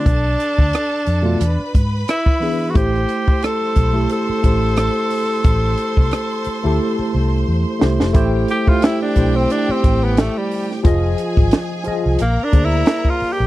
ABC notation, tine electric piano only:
X:1
M:4/4
L:1/16
Q:"Swing 16ths" 1/4=89
K:Am
V:1 name="Tine electric piano"
z6 z [B,,A,DF] z6 [E,B,D^G] z | [A,EGc]4- [A,EGc] z2 [A,EGA]2 z [A,EGc]6 | z6 z [A,EGA]4- [A,EGA] z2 [A,EGc] z | [A,EGc]2 z [A,EGc]2 z [A,EGc]6 z4 |
[F,F_A_e]4 z2 [F,FAe]2 z2 [_B,Acd]4 z2 |]